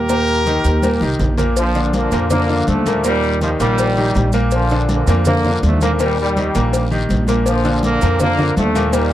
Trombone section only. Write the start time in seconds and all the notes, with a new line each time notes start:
1.57 A#2 D3 F3
1.95 D3 F3 A#3
2.31 D3 F3 A#3
2.67 D3 F3 A3
3.05 A#2 D#3 G3
3.42 F3
3.61 A#2 D#3 G3
4.53 A#2 D3 F3
4.91 D3 F3 A#3
5.27 D3 F3 A#3
5.65 A3
5.83 A#3
6.01 A#2 D#3 G3
6.21 A#2 D#3 G3
7.48 A#2 D3 F3
7.84 D3 F3 A#3
8.21 D3 F3 A#3
8.57 D3 F3 A3
8.95 A#2 D#3 G3